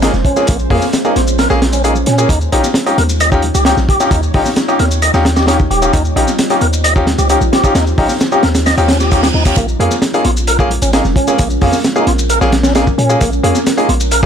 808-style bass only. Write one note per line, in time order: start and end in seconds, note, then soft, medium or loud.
0.14 0.23 F1 loud
0.49 0.67 A#1 loud
0.70 0.80 F2 medium
1.16 1.47 A#1 medium
1.50 2.04 A#1 loud
2.07 2.26 A#2 loud
2.29 2.48 D#2 medium
2.52 2.62 A#1 medium
2.98 3.51 D#2 medium
3.55 3.73 C#2 loud
3.77 3.87 A#1 medium
4.11 4.30 D#2 loud
4.34 4.44 A#1 medium
4.80 5.10 D#2 medium
5.14 5.67 D#2 loud
5.71 5.89 D#1 medium
5.94 6.12 D#2 medium
6.16 6.25 A#1 medium
6.61 7.15 D#2 medium
7.19 7.37 C#2 loud
7.41 7.50 A#1 loud
7.75 7.94 D#2 loud
7.98 8.07 A#1 medium
8.43 8.74 D#2 medium
8.78 9.31 D#2 medium
9.34 9.53 D#2 medium
9.57 9.75 A#1 loud
9.80 9.89 F2 medium
10.25 10.79 A#1 medium
10.82 11.01 G#1 loud
11.05 11.14 F1 loud
11.39 11.58 A#1 loud
11.62 11.71 F2 medium
12.07 12.38 A#1 medium
12.41 12.95 A#1 loud
12.98 13.16 A#2 medium
13.21 13.39 A#1 medium
13.44 13.53 F2 medium
13.89 14.26 A#1 medium